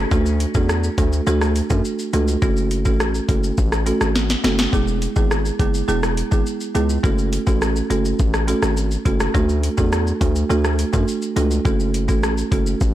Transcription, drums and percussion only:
0.11 kick loud
0.11 shaker medium
0.26 shaker medium
0.40 closed hi-hat medium
0.40 shaker medium
0.55 kick medium
0.55 shaker medium
0.69 cross-stick medium
0.69 shaker medium
0.84 shaker medium
0.98 kick medium
0.98 closed hi-hat medium
0.98 shaker medium
1.13 shaker medium
1.27 shaker medium
1.41 cross-stick medium
1.41 shaker medium
1.56 closed hi-hat medium
1.56 shaker medium
1.70 kick medium
1.70 shaker medium
1.85 shaker medium
1.99 shaker medium
2.13 closed hi-hat medium
2.13 shaker soft
2.28 shaker medium
2.42 kick loud
2.42 shaker medium
2.57 shaker medium
2.71 closed hi-hat medium
2.71 shaker medium
2.85 kick medium
2.85 shaker medium
3.00 cross-stick medium
3.00 shaker medium
3.15 shaker medium
3.29 kick loud
3.29 closed hi-hat medium
3.29 shaker medium
3.43 shaker medium
3.58 kick medium
3.58 shaker medium
3.72 cross-stick medium
3.72 shaker medium
3.87 closed hi-hat medium
3.87 shaker medium
4.01 cross-stick medium
4.01 shaker medium
4.16 snare medium
4.16 shaker medium
4.30 snare medium
4.30 shaker medium
4.44 snare medium
4.44 closed hi-hat medium
4.44 shaker soft
4.59 snare medium
4.59 shaker medium
4.73 kick loud
4.73 shaker medium
4.88 shaker medium
5.02 closed hi-hat medium
5.02 shaker medium
5.16 kick medium
5.16 shaker medium
5.31 cross-stick medium
5.31 shaker medium
5.45 shaker medium
5.60 kick medium
5.60 closed hi-hat medium
5.60 shaker soft
5.74 shaker medium
5.89 shaker medium
6.03 cross-stick medium
6.03 shaker medium
6.17 closed hi-hat medium
6.17 shaker medium
6.32 kick medium
6.32 shaker medium
6.46 shaker medium
6.61 shaker medium
6.75 closed hi-hat medium
6.75 shaker soft
6.90 shaker medium
7.04 kick loud
7.04 shaker medium
7.18 shaker medium
7.33 closed hi-hat medium
7.33 shaker medium
7.47 kick medium
7.47 shaker medium
7.62 cross-stick medium
7.62 shaker medium
7.76 shaker medium
7.91 closed hi-hat medium
7.91 shaker soft
8.05 shaker medium
8.19 kick medium
8.19 shaker medium
8.34 cross-stick medium
8.34 shaker medium
8.48 closed hi-hat medium
8.48 shaker medium
8.62 cross-stick medium
8.62 shaker medium
8.77 shaker medium
8.91 shaker medium
9.06 kick medium
9.06 closed hi-hat medium
9.06 shaker soft
9.20 cross-stick loud
9.20 shaker medium
9.35 kick loud
9.35 shaker medium
9.49 shaker medium
9.63 closed hi-hat medium
9.63 shaker medium
9.78 kick medium
9.78 shaker medium
9.93 cross-stick medium
9.93 shaker medium
10.07 shaker medium
10.21 kick medium
10.21 closed hi-hat medium
10.21 shaker medium
10.36 shaker medium
10.50 shaker medium
10.65 cross-stick medium
10.65 shaker medium
10.79 closed hi-hat medium
10.79 shaker medium
10.93 kick medium
10.93 shaker medium
11.08 shaker medium
11.22 shaker medium
11.37 closed hi-hat medium
11.37 shaker soft
11.51 shaker medium
11.65 kick loud
11.65 shaker medium
11.80 shaker medium
11.94 closed hi-hat medium
11.94 shaker medium
12.09 kick medium
12.09 shaker medium
12.23 cross-stick medium
12.23 shaker medium
12.38 shaker medium
12.52 kick medium
12.52 closed hi-hat medium
12.52 shaker medium
12.67 shaker medium
12.81 kick medium
12.81 shaker medium

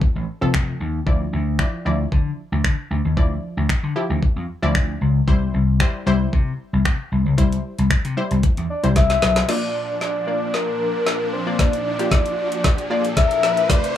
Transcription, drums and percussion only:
0.02 kick loud
0.54 finger snap loud
0.54 kick loud
1.07 kick loud
1.59 finger snap loud
1.59 kick loud
2.12 kick loud
2.64 finger snap loud
2.64 kick loud
3.17 kick loud
3.69 finger snap loud
3.69 kick loud
4.23 kick loud
4.75 finger snap loud
4.75 kick loud
5.28 kick loud
5.80 finger snap loud
5.80 kick loud
6.33 kick loud
6.85 finger snap loud
6.85 kick loud
7.38 kick loud
7.38 closed hi-hat medium
7.52 closed hi-hat medium
7.79 closed hi-hat soft
7.90 finger snap loud
7.90 kick loud
7.90 closed hi-hat medium
8.05 closed hi-hat medium
8.31 closed hi-hat medium
8.43 kick loud
8.43 closed hi-hat medium
8.57 closed hi-hat soft
8.84 closed hi-hat soft
8.96 kick loud
8.96 snare medium
8.96 closed hi-hat medium
9.10 snare medium
9.10 closed hi-hat medium
9.22 snare medium
9.36 snare medium
9.36 closed hi-hat medium
9.49 snare medium
9.49 crash medium
10.01 snare medium
10.54 snare medium
11.07 snare medium
11.59 kick loud
11.59 snare medium
11.59 closed hi-hat medium
11.73 closed hi-hat medium
11.99 closed hi-hat medium
12.11 kick loud
12.11 snare medium
12.11 closed hi-hat medium
12.26 closed hi-hat medium
12.52 closed hi-hat medium
12.64 kick loud
12.64 snare medium
12.64 closed hi-hat medium
12.78 closed hi-hat soft
13.05 closed hi-hat medium
13.17 kick loud
13.17 snare medium
13.17 closed hi-hat medium
13.31 closed hi-hat soft
13.43 snare medium
13.57 closed hi-hat medium
13.70 kick loud
13.70 snare medium
13.70 closed hi-hat medium
13.70 shaker medium
13.84 closed hi-hat medium
13.84 shaker medium

